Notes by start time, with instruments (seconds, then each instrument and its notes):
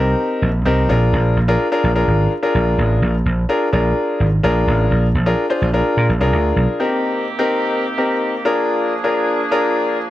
Already playing: slap bass C2, grand piano C4 D#4 G4 A#4
0.42 slap bass A#1
0.65 slap bass C2, grand piano C4 D#4 G4 A#4
0.89 slap bass A#1, grand piano D4 F4 G#4 A#4
1.13 slap bass A#1
1.37 slap bass A#1
1.48 grand piano D4 F4 G#4 A#4
1.72 grand piano D4 F4 G#4 A#4
1.84 slap bass A#1
1.95 grand piano D4 F4 G#4 A#4
2.08 slap bass G#1
2.43 grand piano D4 F4 G#4 A#4
2.55 slap bass A#1
2.78 slap bass A1
3.02 slap bass A#1
3.26 slap bass A#1
3.49 grand piano D4 F4 G#4 A#4
3.73 slap bass A#1, grand piano D4 F4 G#4 A#4
4.20 slap bass G#1
4.43 slap bass A#1, grand piano D4 F4 G#4 A#4
4.67 slap bass A1
4.91 slap bass A#1
5.15 slap bass A#1
5.26 grand piano D4 F4 G#4 A#4
5.50 grand piano D4 F4 G#4 C5
5.62 slap bass A#1
5.73 grand piano D4 F4 G#4 A#4
5.97 slap bass A#2
6.09 slap bass A#1
6.21 slap bass C2, grand piano D4 F4 G#4 A#4
6.33 slap bass D2
6.56 slap bass B1
6.80 woodwind section D#3 A#3 C4 G4, grand piano C4 D#4 G4 A#4
7.39 grand piano C4 D#4 G4 A#4
7.98 grand piano C4 D#4 G4 A#4
8.45 woodwind section F3 D4 G#4, grand piano D4 F4 G#4 A#4
9.04 grand piano D4 F4 G#4 A#4
9.51 grand piano D4 F4 G#4 A#4